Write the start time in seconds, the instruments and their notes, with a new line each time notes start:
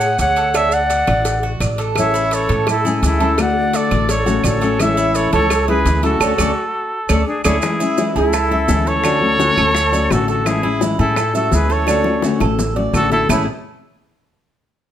Already playing: upright bass A2, flute C#5, trumpet F#5
0.01 cuban tres G#4, maracas
0.19 upright bass D2, flute C#5, trumpet F#5, cowbell, maracas
0.36 cuban tres A4, cowbell, maracas
0.54 cuban tres D4, flute C#5, trumpet E5, cowbell, claves, maracas
0.72 flute D5, trumpet F#5, maracas
0.90 cuban tres F#4, cowbell, maracas
1.07 upright bass A1, cuban tres D5, cowbell, claves, maracas
1.25 cowbell, maracas
1.43 cuban tres F#4
1.60 upright bass A1, cuban tres D5, cowbell, claves, maracas
1.78 cuban tres A4, cowbell, maracas
1.96 nylon-string guitar E3 C#4 E4, flute C#5, trumpet E5, cowbell, claves, maracas
2.14 cuban tres E4, maracas
2.31 flute A4, trumpet C#5, cowbell, maracas
2.49 upright bass A2, cuban tres A4, cowbell, maracas
2.67 flute E4, trumpet A4, muted nylon-string guitar stroke, cowbell, claves, maracas
2.85 nylon-string guitar G#3 C#4 E4, cuban tres G#4, maracas
3.02 upright bass D2, nylon-string guitar E3 G#3 C#4 E4, flute E4, cowbell, maracas
3.06 trumpet A4
3.20 nylon-string guitar G#3 C#4 E4, cuban tres A4, cowbell, maracas
3.38 nylon-string guitar D3 A3 F#4, flute D5, trumpet F#5, cowbell, claves, maracas
3.73 cuban tres F#4, flute A4, trumpet D5, cowbell, maracas
3.91 upright bass A1, cuban tres D5, cowbell, claves, maracas
4.09 flute A4, trumpet C#5, muted nylon-string guitar stroke, cowbell, maracas
4.26 nylon-string guitar A3 C#4 F#4, cuban tres F#4, maracas
4.44 upright bass A1, nylon-string guitar D3 A3 C#4 F#4, flute A4, trumpet C#5, cuban tres D5, cowbell, claves, maracas
4.61 nylon-string guitar A3 C#4 F#4, cuban tres A4, cowbell, maracas
4.79 nylon-string guitar E3 G#3 C#4 E4, flute C#5, trumpet E5, cowbell, claves, maracas
4.97 cuban tres E4, maracas
5.15 flute A4, trumpet C#5, cowbell, maracas
5.33 upright bass C#2, cuban tres A4, flute A4, trumpet C#5, cowbell, maracas
5.50 muted nylon-string guitar stroke, cowbell, claves, maracas
5.68 nylon-string guitar G#3 C#4 E4, cuban tres G#4, flute G#4, trumpet B4
5.85 upright bass D2, nylon-string guitar E3 G#3 C#4 E4, cowbell, maracas
6.03 nylon-string guitar G#3 C#4 E4, flute F#4, cuban tres A4, trumpet A4, cowbell, maracas
6.20 upright bass D2, nylon-string guitar A3 C#4 D4, cuban tres A4 C#5 D5, cowbell, claves, maracas
6.38 upright bass D2, nylon-string guitar A3 C#4 D4, cuban tres A4 C#5 D5, cowbell, claves, maracas
7.09 upright bass D2, nylon-string guitar A3 C#4 D4, cuban tres A4 C#5 D5, cowbell, claves, maracas
7.27 flute D4, trumpet G#4
7.45 upright bass D2, nylon-string guitar A3 C#4 D4, flute E4, trumpet G#4, cuban tres A4 C#5 D5, cowbell, claves, maracas
7.62 nylon-string guitar E3 G#3 C#4 E4, high bongo, claves, maracas
7.80 nylon-string guitar G#3 C#4 E4, cuban tres E4, maracas
7.97 nylon-string guitar E3 G#3 C#4 E4, high bongo, maracas
8.15 upright bass C#2, nylon-string guitar G#3 C#4 E4, flute E4, cuban tres G#4, trumpet A4, high bongo, maracas
8.33 cuban tres A4, muted nylon-string guitar stroke, high bongo, claves, maracas
8.51 nylon-string guitar G#3 C#4 E4, cuban tres E5, high bongo
8.68 upright bass D2, nylon-string guitar E3 G#3 C#4 E4, high bongo, low bongo, maracas
8.86 flute A4, cuban tres A4, trumpet C#5, high bongo, maracas
9.03 nylon-string guitar D3 A3 C#4 F#4, cuban tres D4, high bongo, claves, maracas
9.21 nylon-string guitar A3 C#4 F#4
9.38 nylon-string guitar D3 A3 C#4 F#4, cuban tres F#4, high bongo, maracas
9.56 upright bass D2, nylon-string guitar A3 C#4 F#4, cuban tres A4, high bongo, claves, maracas
9.74 muted nylon-string guitar stroke, high bongo, maracas
9.92 nylon-string guitar A3 C#4 F#4, cuban tres D5, high bongo, maracas
10.10 upright bass A1, nylon-string guitar D3 A3 C#4 F#4, flute F#4, trumpet A4, high bongo, low bongo, claves, maracas
10.28 flute F#4, cuban tres A4, trumpet A4, high bongo, maracas
10.45 nylon-string guitar E3 G#3 C#4 E4, flute E4, trumpet G#4, high bongo, claves, maracas
10.63 nylon-string guitar G#3 C#4 E4, cuban tres E4
10.81 nylon-string guitar E3 G#3 C#4 E4, high bongo, maracas
10.99 upright bass A2, nylon-string guitar G#3 C#4 E4, flute E4, cuban tres G#4, trumpet A4, high bongo, maracas
11.16 cuban tres A4, muted nylon-string guitar stroke, high bongo, claves, maracas
11.34 nylon-string guitar G#3 C#4 E4, flute F#4, trumpet A4, cuban tres E5, high bongo, maracas
11.51 upright bass D2, nylon-string guitar E3 G#3 C#4 E4, flute G#4, trumpet B4, high bongo, low bongo, maracas
11.69 cuban tres A4, flute A4, trumpet C#5, high bongo, maracas
11.87 nylon-string guitar D3 A3 C#4 F#4, cuban tres D4, high bongo, claves, maracas
12.04 nylon-string guitar A3 C#4 F#4, high bongo
12.22 nylon-string guitar D3 A3 C#4 F#4, cuban tres F#4, high bongo, maracas
12.40 upright bass A1, nylon-string guitar A3 C#4 F#4, cuban tres A4, high bongo, claves, maracas
12.59 muted nylon-string guitar stroke, low bongo, maracas
12.76 nylon-string guitar A3 C#4 F#4, cuban tres D5
12.93 upright bass A1, nylon-string guitar D3 A3 C#4 F#4, flute F#4, trumpet A4, low bongo, claves, maracas
13.11 flute E4, cuban tres A4, trumpet A4, low bongo, maracas
13.29 upright bass A1, nylon-string guitar A2 E3 G#3 C#4 E4, cuban tres A3 E4 G#4, trumpet E4, flute C#5, low bongo, claves, maracas